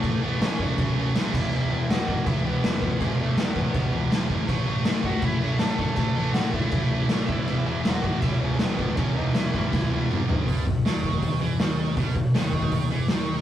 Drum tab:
CC |x---x---x---x-x-|x---x---x---x---|x---x---x---x---|x---x---x---x---|
HH |----------------|----------------|----------------|----------------|
SD |----o-------o---|----o-------o---|----o-------o---|----o-------o---|
T2 |----------------|----------------|----------------|----------------|
FT |----------------|----------------|----------------|----------------|
BD |o-----o-o-----o-|------o-o-----o-|o-----o-o-----o-|o-----o-o-----o-|

CC |x---x---x---x---|x---x---x---x---|x---x-----------|----------------|
HH |----------------|----------------|----------------|o---o---o---o---|
SD |----o-------o---|----o-------o---|----o---o-------|----o-------o---|
T2 |----------------|----------------|------------o---|----------------|
FT |----------------|----------------|--------------o-|----------------|
BD |o-----o-o-----o-|------o-o-----o-|o-----o-o-------|o-o---ooo-------|

CC |----------------|
HH |o---o---o---o---|
SD |----o-------o---|
T2 |----------------|
FT |----------------|
BD |o-o---ooo-------|